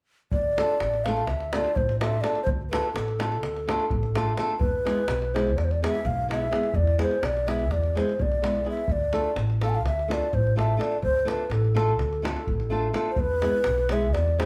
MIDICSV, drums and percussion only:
0, 0, Header, 1, 2, 480
1, 0, Start_track
1, 0, Tempo, 475813
1, 331, Time_signature, 9, 3, 24, 8
1, 14582, End_track
2, 0, Start_track
2, 0, Title_t, "Davul"
2, 318, Note_on_c, 9, 43, 89
2, 419, Note_off_c, 9, 43, 0
2, 585, Note_on_c, 9, 37, 70
2, 686, Note_off_c, 9, 37, 0
2, 811, Note_on_c, 9, 37, 59
2, 912, Note_off_c, 9, 37, 0
2, 944, Note_on_c, 9, 37, 21
2, 1045, Note_off_c, 9, 37, 0
2, 1066, Note_on_c, 9, 37, 64
2, 1167, Note_off_c, 9, 37, 0
2, 1179, Note_on_c, 9, 37, 22
2, 1280, Note_off_c, 9, 37, 0
2, 1286, Note_on_c, 9, 37, 54
2, 1386, Note_off_c, 9, 37, 0
2, 1416, Note_on_c, 9, 37, 26
2, 1517, Note_off_c, 9, 37, 0
2, 1541, Note_on_c, 9, 37, 81
2, 1642, Note_off_c, 9, 37, 0
2, 1661, Note_on_c, 9, 37, 28
2, 1761, Note_off_c, 9, 37, 0
2, 1778, Note_on_c, 9, 43, 89
2, 1879, Note_off_c, 9, 43, 0
2, 1908, Note_on_c, 9, 37, 30
2, 2008, Note_off_c, 9, 37, 0
2, 2029, Note_on_c, 9, 37, 85
2, 2130, Note_off_c, 9, 37, 0
2, 2256, Note_on_c, 9, 37, 66
2, 2357, Note_off_c, 9, 37, 0
2, 2374, Note_on_c, 9, 37, 26
2, 2475, Note_off_c, 9, 37, 0
2, 2489, Note_on_c, 9, 43, 97
2, 2590, Note_off_c, 9, 43, 0
2, 2752, Note_on_c, 9, 37, 85
2, 2853, Note_off_c, 9, 37, 0
2, 2983, Note_on_c, 9, 37, 73
2, 3083, Note_off_c, 9, 37, 0
2, 3109, Note_on_c, 9, 37, 25
2, 3210, Note_off_c, 9, 37, 0
2, 3227, Note_on_c, 9, 37, 75
2, 3328, Note_off_c, 9, 37, 0
2, 3350, Note_on_c, 9, 37, 26
2, 3451, Note_off_c, 9, 37, 0
2, 3461, Note_on_c, 9, 37, 59
2, 3562, Note_off_c, 9, 37, 0
2, 3596, Note_on_c, 9, 37, 26
2, 3697, Note_off_c, 9, 37, 0
2, 3719, Note_on_c, 9, 37, 76
2, 3820, Note_off_c, 9, 37, 0
2, 3830, Note_on_c, 9, 37, 29
2, 3931, Note_off_c, 9, 37, 0
2, 3939, Note_on_c, 9, 43, 87
2, 4040, Note_off_c, 9, 43, 0
2, 4066, Note_on_c, 9, 37, 30
2, 4167, Note_off_c, 9, 37, 0
2, 4191, Note_on_c, 9, 37, 71
2, 4292, Note_off_c, 9, 37, 0
2, 4413, Note_on_c, 9, 37, 64
2, 4514, Note_off_c, 9, 37, 0
2, 4536, Note_on_c, 9, 37, 21
2, 4637, Note_off_c, 9, 37, 0
2, 4649, Note_on_c, 9, 43, 88
2, 4750, Note_off_c, 9, 43, 0
2, 4909, Note_on_c, 9, 37, 63
2, 5010, Note_off_c, 9, 37, 0
2, 5125, Note_on_c, 9, 37, 75
2, 5225, Note_off_c, 9, 37, 0
2, 5267, Note_on_c, 9, 37, 25
2, 5368, Note_off_c, 9, 37, 0
2, 5406, Note_on_c, 9, 37, 63
2, 5507, Note_off_c, 9, 37, 0
2, 5519, Note_on_c, 9, 37, 22
2, 5620, Note_off_c, 9, 37, 0
2, 5630, Note_on_c, 9, 37, 51
2, 5730, Note_off_c, 9, 37, 0
2, 5762, Note_on_c, 9, 37, 26
2, 5862, Note_off_c, 9, 37, 0
2, 5890, Note_on_c, 9, 37, 76
2, 5991, Note_off_c, 9, 37, 0
2, 6004, Note_on_c, 9, 37, 29
2, 6105, Note_off_c, 9, 37, 0
2, 6116, Note_on_c, 9, 43, 69
2, 6217, Note_off_c, 9, 43, 0
2, 6365, Note_on_c, 9, 37, 70
2, 6466, Note_off_c, 9, 37, 0
2, 6584, Note_on_c, 9, 37, 62
2, 6685, Note_off_c, 9, 37, 0
2, 6692, Note_on_c, 9, 37, 25
2, 6793, Note_off_c, 9, 37, 0
2, 6796, Note_on_c, 9, 43, 83
2, 6897, Note_off_c, 9, 43, 0
2, 6934, Note_on_c, 9, 37, 27
2, 7035, Note_off_c, 9, 37, 0
2, 7053, Note_on_c, 9, 37, 66
2, 7154, Note_off_c, 9, 37, 0
2, 7176, Note_on_c, 9, 37, 27
2, 7277, Note_off_c, 9, 37, 0
2, 7294, Note_on_c, 9, 37, 72
2, 7395, Note_off_c, 9, 37, 0
2, 7432, Note_on_c, 9, 37, 22
2, 7533, Note_off_c, 9, 37, 0
2, 7547, Note_on_c, 9, 37, 66
2, 7647, Note_off_c, 9, 37, 0
2, 7662, Note_on_c, 9, 37, 24
2, 7763, Note_off_c, 9, 37, 0
2, 7777, Note_on_c, 9, 37, 47
2, 7777, Note_on_c, 9, 43, 54
2, 7878, Note_off_c, 9, 37, 0
2, 7878, Note_off_c, 9, 43, 0
2, 7904, Note_on_c, 9, 37, 19
2, 8005, Note_off_c, 9, 37, 0
2, 8042, Note_on_c, 9, 37, 59
2, 8143, Note_off_c, 9, 37, 0
2, 8165, Note_on_c, 9, 37, 25
2, 8265, Note_off_c, 9, 37, 0
2, 8270, Note_on_c, 9, 43, 84
2, 8371, Note_off_c, 9, 43, 0
2, 8389, Note_on_c, 9, 37, 23
2, 8490, Note_off_c, 9, 37, 0
2, 8512, Note_on_c, 9, 37, 65
2, 8613, Note_off_c, 9, 37, 0
2, 8631, Note_on_c, 9, 37, 24
2, 8732, Note_off_c, 9, 37, 0
2, 8849, Note_on_c, 9, 37, 24
2, 8950, Note_off_c, 9, 37, 0
2, 8957, Note_on_c, 9, 43, 83
2, 9058, Note_off_c, 9, 43, 0
2, 9208, Note_on_c, 9, 37, 53
2, 9309, Note_off_c, 9, 37, 0
2, 9446, Note_on_c, 9, 37, 60
2, 9547, Note_off_c, 9, 37, 0
2, 9581, Note_on_c, 9, 37, 23
2, 9682, Note_off_c, 9, 37, 0
2, 9700, Note_on_c, 9, 37, 58
2, 9801, Note_off_c, 9, 37, 0
2, 9831, Note_on_c, 9, 37, 19
2, 9932, Note_off_c, 9, 37, 0
2, 9943, Note_on_c, 9, 37, 47
2, 10043, Note_off_c, 9, 37, 0
2, 10082, Note_on_c, 9, 37, 21
2, 10183, Note_off_c, 9, 37, 0
2, 10201, Note_on_c, 9, 37, 66
2, 10302, Note_off_c, 9, 37, 0
2, 10322, Note_on_c, 9, 37, 23
2, 10422, Note_off_c, 9, 37, 0
2, 10427, Note_on_c, 9, 43, 66
2, 10528, Note_off_c, 9, 43, 0
2, 10561, Note_on_c, 9, 37, 22
2, 10662, Note_off_c, 9, 37, 0
2, 10680, Note_on_c, 9, 37, 55
2, 10781, Note_off_c, 9, 37, 0
2, 10905, Note_on_c, 9, 37, 52
2, 11006, Note_off_c, 9, 37, 0
2, 11016, Note_on_c, 9, 37, 23
2, 11117, Note_off_c, 9, 37, 0
2, 11129, Note_on_c, 9, 43, 62
2, 11230, Note_off_c, 9, 43, 0
2, 11381, Note_on_c, 9, 37, 62
2, 11481, Note_off_c, 9, 37, 0
2, 11616, Note_on_c, 9, 37, 51
2, 11716, Note_off_c, 9, 37, 0
2, 11749, Note_on_c, 9, 37, 19
2, 11849, Note_off_c, 9, 37, 0
2, 11869, Note_on_c, 9, 37, 62
2, 11970, Note_off_c, 9, 37, 0
2, 11991, Note_on_c, 9, 37, 20
2, 12092, Note_off_c, 9, 37, 0
2, 12098, Note_on_c, 9, 37, 45
2, 12199, Note_off_c, 9, 37, 0
2, 12233, Note_on_c, 9, 37, 23
2, 12334, Note_off_c, 9, 37, 0
2, 12360, Note_on_c, 9, 37, 75
2, 12461, Note_off_c, 9, 37, 0
2, 12473, Note_on_c, 9, 37, 25
2, 12574, Note_off_c, 9, 37, 0
2, 12583, Note_on_c, 9, 43, 66
2, 12683, Note_off_c, 9, 43, 0
2, 12710, Note_on_c, 9, 37, 25
2, 12810, Note_off_c, 9, 37, 0
2, 13057, Note_on_c, 9, 37, 58
2, 13158, Note_off_c, 9, 37, 0
2, 13171, Note_on_c, 9, 37, 21
2, 13272, Note_off_c, 9, 37, 0
2, 13279, Note_on_c, 9, 43, 83
2, 13380, Note_off_c, 9, 43, 0
2, 13538, Note_on_c, 9, 37, 61
2, 13639, Note_off_c, 9, 37, 0
2, 13760, Note_on_c, 9, 37, 78
2, 13861, Note_off_c, 9, 37, 0
2, 13900, Note_on_c, 9, 37, 21
2, 14001, Note_off_c, 9, 37, 0
2, 14014, Note_on_c, 9, 37, 66
2, 14115, Note_off_c, 9, 37, 0
2, 14150, Note_on_c, 9, 37, 24
2, 14251, Note_off_c, 9, 37, 0
2, 14270, Note_on_c, 9, 37, 61
2, 14371, Note_off_c, 9, 37, 0
2, 14404, Note_on_c, 9, 37, 19
2, 14505, Note_off_c, 9, 37, 0
2, 14524, Note_on_c, 9, 37, 81
2, 14582, Note_off_c, 9, 37, 0
2, 14582, End_track
0, 0, End_of_file